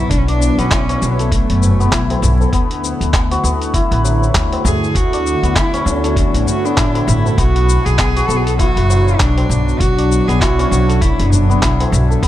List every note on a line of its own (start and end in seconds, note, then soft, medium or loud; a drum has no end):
0.00 2.52 B2 medium
0.00 2.53 F#3 medium
0.00 2.58 F#3 medium
0.00 1.39 A3 medium
0.00 0.58 B3 loud
0.00 4.48 B3 medium
0.00 0.11 E4 loud
0.00 0.71 E4 loud
0.00 1.71 F#4 loud
0.00 1.81 B4 medium
0.10 0.49 B1 loud
0.10 0.19 D4 medium
0.10 kick loud
0.10 closed hi-hat medium
0.10 cabasa soft
0.18 0.28 C#4 medium
0.27 0.60 D4 loud
0.27 0.95 D4 medium
0.27 closed hi-hat soft
0.41 tabla tin medium
0.41 cabasa medium
0.58 0.94 B1 medium
0.58 1.80 B3 loud
0.58 1.03 C#4 loud
0.58 closed hi-hat soft
0.58 cabasa soft
0.71 1.92 E4 loud
0.71 kick loud
0.71 clap loud
0.71 closed hi-hat medium
0.71 cabasa soft
0.89 4.76 C#4 loud
0.89 closed hi-hat soft
0.89 tabla tin medium
0.89 cabasa soft
1.01 1.40 B1 medium
1.01 1.33 B3 medium
1.01 tabla na soft
1.01 cabasa medium
1.19 2.10 A4 medium
1.19 closed hi-hat soft
1.19 cabasa soft
1.31 2.22 A3 medium
1.31 kick loud
1.31 closed hi-hat medium
1.31 cabasa soft
1.50 1.85 F#1 medium
1.50 closed hi-hat soft
1.62 tabla tin soft
1.62 tabla ge medium
1.62 cabasa medium
1.80 2.53 B3 loud
1.80 cabasa soft
1.92 2.14 B1 loud
1.92 3.74 E4 loud
1.92 kick loud
1.92 clap loud
1.92 closed hi-hat medium
1.92 cabasa medium
2.10 2.40 A4 medium
2.10 closed hi-hat soft
2.10 tabla na medium
2.22 2.44 B1 loud
2.22 tabla ge loud
2.22 cabasa medium
2.41 5.34 A4 medium
2.41 tabla tin medium
2.41 cabasa soft
2.53 2.91 D2 loud
2.53 7.38 D3 medium
2.53 3.13 B3 loud
2.53 kick loud
2.53 closed hi-hat medium
2.53 cabasa soft
2.70 7.37 A3 medium
2.70 closed hi-hat soft
2.84 tabla tin soft
2.84 cabasa medium
3.01 3.36 D2 medium
3.01 closed hi-hat soft
3.01 cabasa soft
3.13 3.43 B3 loud
3.13 kick loud
3.13 clap medium
3.13 closed hi-hat medium
3.13 cabasa soft
3.27 8.52 E4 medium
3.31 6.56 F#4 loud
3.31 closed hi-hat soft
3.31 tabla tin medium
3.31 cabasa soft
3.44 3.82 D2 medium
3.44 5.43 B3 loud
3.44 tabla na soft
3.44 cabasa medium
3.62 closed hi-hat soft
3.62 cabasa soft
3.74 5.55 E4 loud
3.74 kick loud
3.74 closed hi-hat medium
3.74 cabasa soft
3.84 8.78 F#4 medium
3.91 4.27 A1 loud
3.91 6.65 B4 loud
3.91 closed hi-hat soft
4.04 7.43 F#3 medium
4.04 tabla tin medium
4.04 cabasa medium
4.22 tabla tin medium
4.22 cabasa soft
4.34 4.56 D2 loud
4.34 kick loud
4.34 clap loud
4.34 closed hi-hat medium
4.34 cabasa soft
4.53 closed hi-hat soft
4.53 tabla na medium
4.65 4.86 D2 loud
4.65 4.97 G#4 medium
4.65 tabla ge loud
4.65 cabasa medium
4.83 tabla na soft
4.83 cabasa soft
4.95 5.33 D2 loud
4.95 5.58 F#4 loud
4.95 kick loud
4.95 closed hi-hat medium
4.95 cabasa soft
5.13 5.80 D4 medium
5.13 closed hi-hat soft
5.13 cabasa soft
5.26 tabla tin soft
5.26 cabasa medium
5.43 5.79 D2 medium
5.43 6.64 B3 medium
5.43 closed hi-hat soft
5.43 cabasa soft
5.56 6.77 E4 loud
5.56 5.88 E4 medium
5.56 kick loud
5.56 clap loud
5.56 closed hi-hat medium
5.56 cabasa soft
5.74 9.60 C#4 loud
5.74 closed hi-hat soft
5.74 tabla tin medium
5.74 cabasa soft
5.86 6.24 D2 medium
5.86 6.48 D4 medium
5.86 tabla na soft
5.86 cabasa medium
6.04 6.95 A4 medium
6.04 closed hi-hat soft
6.04 cabasa soft
6.16 kick loud
6.16 closed hi-hat medium
6.16 cabasa soft
6.34 6.42 A1 medium
6.34 closed hi-hat soft
6.34 tabla na soft
6.34 cabasa soft
6.47 6.66 F#4 medium
6.47 tabla tin soft
6.47 tabla ge medium
6.47 cabasa medium
6.65 7.38 B3 loud
6.65 7.09 D4 medium
6.65 cabasa soft
6.77 6.99 A1 loud
6.77 8.59 E4 loud
6.77 kick loud
6.77 clap loud
6.77 closed hi-hat medium
6.77 cabasa soft
6.95 7.25 A4 medium
6.95 closed hi-hat soft
6.95 tabla na medium
7.07 7.29 A1 loud
7.07 7.39 E4 medium
7.07 tabla ge loud
7.07 cabasa medium
7.26 10.18 A4 medium
7.26 tabla tin medium
7.26 cabasa soft
7.37 7.76 B1 loud
7.37 12.22 B2 medium
7.37 7.98 B3 loud
7.37 7.86 F#4 loud
7.37 kick loud
7.37 closed hi-hat medium
7.37 cabasa soft
7.56 closed hi-hat soft
7.68 tabla tin medium
7.68 cabasa medium
7.85 8.21 B1 medium
7.85 8.29 G#4 loud
7.85 closed hi-hat soft
7.85 cabasa soft
7.98 8.28 B3 loud
7.98 kick loud
7.98 clap loud
7.98 closed hi-hat medium
7.98 cabasa soft
8.13 12.23 F#3 medium
8.13 11.41 F#4 loud
8.13 closed hi-hat soft
8.13 tabla tin medium
8.17 cabasa soft
8.28 8.67 B1 medium
8.28 10.28 B3 loud
8.28 8.38 A4 medium
8.28 tabla na soft
8.28 cabasa medium
8.36 8.46 G#4 medium
8.45 8.58 A4 medium
8.45 closed hi-hat soft
8.45 cabasa soft
8.58 10.41 E4 loud
8.58 9.21 F#4 loud
8.58 kick loud
8.58 closed hi-hat medium
8.58 cabasa soft
8.76 9.12 F#1 medium
8.76 12.28 D4 medium
8.76 11.50 B4 medium
8.76 closed hi-hat soft
8.89 12.27 F#3 medium
8.89 tabla tin soft
8.89 cabasa medium
9.07 tabla tin medium
9.07 cabasa soft
9.19 9.41 B1 loud
9.19 9.81 D4 loud
9.19 kick loud
9.19 clap loud
9.19 closed hi-hat medium
9.19 cabasa soft
9.38 closed hi-hat soft
9.38 tabla na medium
9.49 9.71 B1 loud
9.49 tabla ge medium
9.49 cabasa medium
9.69 tabla na soft
9.69 cabasa soft
9.80 10.18 B1 loud
9.80 10.29 F#4 loud
9.80 kick loud
9.80 closed hi-hat medium
9.80 cabasa soft
9.98 10.65 D4 medium
9.98 closed hi-hat soft
10.10 tabla tin medium
10.10 cabasa medium
10.28 10.64 B1 medium
10.28 11.49 B3 medium
10.28 10.41 G#4 loud
10.28 closed hi-hat soft
10.28 cabasa soft
10.40 11.62 E4 loud
10.40 11.03 F#4 loud
10.40 kick loud
10.40 clap medium
10.40 closed hi-hat medium
10.40 cabasa soft
10.59 12.28 C#4 loud
10.59 closed hi-hat soft
10.59 tabla tin medium
10.59 cabasa soft
10.71 11.09 B1 medium
10.71 tabla na soft
10.71 cabasa medium
10.89 11.79 A4 medium
10.89 closed hi-hat soft
10.89 cabasa soft
11.01 11.33 E4 medium
11.01 kick loud
11.01 closed hi-hat medium
11.01 cabasa soft
11.19 11.55 F#1 loud
11.19 closed hi-hat soft
11.32 11.92 D4 medium
11.32 tabla tin medium
11.32 tabla ge medium
11.32 cabasa medium
11.49 12.22 B3 loud
11.49 cabasa soft
11.62 11.83 B1 loud
11.62 12.28 E4 loud
11.62 kick loud
11.62 clap loud
11.62 closed hi-hat medium
11.62 cabasa soft
11.80 12.10 A4 medium
11.80 closed hi-hat soft
11.80 tabla na medium
11.92 12.14 B1 loud
11.92 tabla ge loud
11.92 cabasa medium
12.10 12.28 A4 medium
12.10 tabla tin medium
12.10 cabasa soft
12.22 12.28 D2 loud
12.22 12.28 D3 medium
12.22 12.28 B3 loud
12.22 kick loud
12.22 closed hi-hat medium
12.22 cabasa soft